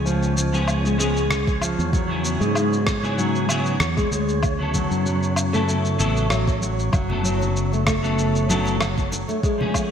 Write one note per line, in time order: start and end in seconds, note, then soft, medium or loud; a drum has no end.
0.00 1.74 C#2 medium
0.00 0.49 F3 medium
0.00 0.49 G#3 medium
0.00 0.50 B3 medium
0.00 0.50 C#4 medium
0.00 0.51 G#4 medium
0.00 9.91 C#5 medium
0.05 0.35 F3 loud
0.05 shaker soft
0.23 shaker soft
0.37 0.83 F3 medium
0.37 shaker medium
0.52 0.95 F3 medium
0.52 0.96 G#3 medium
0.52 0.96 B3 medium
0.52 0.96 C#4 medium
0.52 0.96 G#4 medium
0.52 shaker soft
0.68 low woodblock medium
0.68 shaker soft
0.84 0.98 G#3 medium
0.84 shaker soft
0.98 1.25 F3 medium
0.98 1.25 G#3 medium
0.98 1.60 G#3 loud
0.98 1.25 B3 medium
0.98 1.25 C#4 medium
0.98 1.26 G#4 loud
0.98 shaker medium
1.17 shaker soft
1.31 cross-stick medium
1.31 shaker soft
1.47 kick loud
1.47 shaker soft
1.61 1.91 F3 loud
1.61 low woodblock medium
1.61 shaker medium
1.78 2.36 E2 medium
1.78 shaker soft
1.92 2.39 F#3 medium
1.92 kick loud
1.92 shaker soft
2.07 2.98 C#3 medium
2.07 2.99 F#3 medium
2.07 2.99 B3 medium
2.07 3.00 E4 medium
2.07 3.00 G#4 medium
2.25 shaker medium
2.40 3.76 G#2 medium
2.40 2.54 G#3 medium
2.40 shaker soft
2.55 3.16 G#3 loud
2.55 low woodblock medium
2.55 shaker soft
2.73 shaker soft
2.87 kick loud
2.87 cross-stick medium
2.87 shaker medium
3.02 3.45 C#3 medium
3.02 3.46 F#3 medium
3.02 3.46 B3 medium
3.02 3.46 E4 medium
3.02 3.46 G#4 medium
3.02 shaker soft
3.18 3.48 F#3 loud
3.18 shaker soft
3.35 shaker soft
3.48 3.75 C#3 medium
3.48 3.75 F#3 medium
3.48 3.96 F#3 medium
3.48 3.75 B3 medium
3.48 3.76 E4 medium
3.48 3.76 G#4 medium
3.48 low woodblock medium
3.48 shaker medium
3.66 shaker soft
3.80 4.06 E2 medium
3.80 cross-stick medium
3.80 shaker soft
3.96 4.10 G#3 medium
3.96 kick medium
3.96 shaker soft
4.11 4.86 D2 medium
4.11 4.43 G#3 medium
4.11 shaker medium
4.29 shaker soft
4.43 kick loud
4.43 low woodblock medium
4.43 shaker soft
4.58 5.49 C#3 medium
4.58 5.49 F#3 medium
4.58 5.50 B3 medium
4.58 5.50 E4 medium
4.62 5.51 A4 medium
4.74 5.04 F#3 medium
4.74 kick medium
4.74 shaker medium
4.91 6.01 F#2 medium
4.91 shaker soft
5.06 5.52 F#3 medium
5.06 shaker soft
5.23 shaker soft
5.36 low woodblock medium
5.36 shaker medium
5.53 5.96 C#3 medium
5.53 5.96 F#3 medium
5.53 5.66 A3 loud
5.53 5.96 B3 medium
5.53 5.96 E4 medium
5.53 5.97 A4 medium
5.53 shaker soft
5.67 6.29 A3 medium
5.67 shaker soft
5.85 shaker soft
5.98 6.89 A1 medium
5.98 6.25 C#3 loud
5.98 6.25 F#3 medium
5.98 6.25 B3 medium
5.98 6.26 E4 medium
5.98 6.26 A4 medium
5.98 shaker medium
6.17 shaker soft
6.30 6.60 F#3 loud
6.30 cross-stick medium
6.30 low woodblock medium
6.30 shaker soft
6.48 kick medium
6.48 shaker soft
6.62 6.91 F#3 medium
6.62 shaker medium
6.79 shaker soft
6.92 9.24 F#1 medium
6.92 7.22 F#3 loud
6.92 kick loud
6.92 low woodblock medium
6.92 shaker soft
7.08 7.99 C#3 medium
7.08 7.99 F#3 medium
7.08 8.00 B3 medium
7.08 8.00 E4 medium
7.08 low conga medium
7.13 8.01 A4 medium
7.24 7.71 F#3 medium
7.24 shaker medium
7.42 high conga medium
7.42 shaker soft
7.56 shaker soft
7.72 7.86 A3 medium
7.72 high conga soft
7.72 shaker soft
7.87 8.48 A3 loud
7.87 kick loud
7.87 cross-stick medium
7.87 low conga medium
7.87 low woodblock medium
7.87 shaker medium
8.02 8.45 C#3 medium
8.02 8.45 F#3 medium
8.02 8.46 B3 medium
8.02 8.46 E4 medium
8.02 8.46 A4 loud
8.02 shaker soft
8.18 shaker soft
8.35 shaker soft
8.49 8.75 C#3 medium
8.49 8.79 F#3 medium
8.49 8.75 F#3 medium
8.49 8.75 B3 medium
8.49 8.76 E4 medium
8.49 8.76 A4 loud
8.49 high conga medium
8.49 shaker medium
8.65 muted conga soft
8.65 shaker soft
8.81 9.27 F#3 medium
8.81 cross-stick medium
8.81 low woodblock medium
8.81 shaker soft
8.98 kick medium
8.98 shaker soft
9.12 muted conga medium
9.12 shaker medium
9.28 9.42 A3 medium
9.28 high conga medium
9.28 shaker soft
9.43 9.91 G#3 loud
9.43 kick loud
9.43 shaker soft
9.58 9.91 F3 medium
9.58 9.91 G#3 medium
9.58 9.91 B3 medium
9.58 9.91 C#4 medium
9.58 9.91 G#4 medium
9.58 low conga medium
9.74 kick medium
9.74 low woodblock medium
9.74 shaker medium